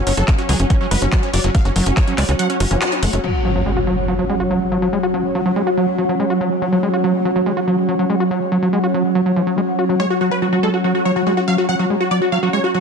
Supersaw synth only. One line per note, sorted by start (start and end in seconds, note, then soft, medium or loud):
0.07 0.14 C#4 medium
0.17 0.24 A4 medium
0.28 0.35 C#4 medium
0.38 0.46 C#4 medium
0.49 0.56 G#4 loud
0.60 0.67 C#4 medium
0.70 0.77 C#4 medium
0.81 0.88 C#4 medium
0.91 0.98 B4 loud
1.02 1.09 C#4 medium
1.12 1.20 C#4 medium
1.23 1.30 C#4 medium
1.33 1.41 D5 medium
1.44 1.51 C#4 medium
1.55 1.62 F5 medium
1.65 1.72 C#4 medium
1.86 1.93 C#4 medium
1.97 2.04 C#5 medium
2.07 2.15 C#4 medium
2.18 2.25 D5 medium
2.29 2.36 C#4 medium
2.39 2.46 F#5 loud
2.50 2.57 C#4 medium
2.60 2.67 C#4 medium
2.71 2.78 C#4 medium
2.81 2.89 F#5 medium
2.92 2.99 C#4 medium
3.03 3.10 F#5 medium
3.13 3.20 C#4 medium
10.00 10.07 C#5 medium
10.10 10.17 F#4 medium
10.21 10.28 F#4 medium
10.31 10.39 B4 medium
10.42 10.49 F#4 medium
10.53 10.60 F#4 medium
10.63 10.70 A4 loud
10.74 10.81 F#4 medium
10.84 10.91 F#4 medium
10.95 11.02 F#4 medium
11.05 11.13 C#5 medium
11.16 11.23 F#4 medium
11.27 11.34 F#4 medium
11.37 11.44 F#4 medium
11.48 11.55 F5 medium
11.58 11.65 F#4 medium
11.69 11.76 F#5 medium
11.79 11.87 F#4 medium
12.01 12.08 F#4 medium
12.11 12.18 D5 medium
12.22 12.29 F#4 medium
12.32 12.39 F5 medium
12.43 12.50 F#4 medium
12.53 12.60 C#5 loud
12.64 12.71 F#4 medium
12.74 12.80 F#4 medium